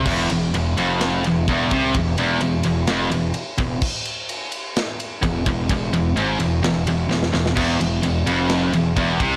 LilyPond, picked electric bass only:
\new Staff \with { instrumentName = "Picked electric bass" } { \clef bass \time 4/4 \tempo 4 = 128 e,,8 e,,8 e,,8 f,,4 e,,8 e,,8 c,8 | e,,8 e,,8 e,,8 e,,8 f,,8 e,,8 r8 e,,8 | r2. e,,8 e,,8 | e,,8 e,,8 gis,,8 e,,8 e,,8 e,,8 e,,8 e,,8 |
e,,8 e,,8 e,,8 f,,4 e,,8 e,,8 c,8 | }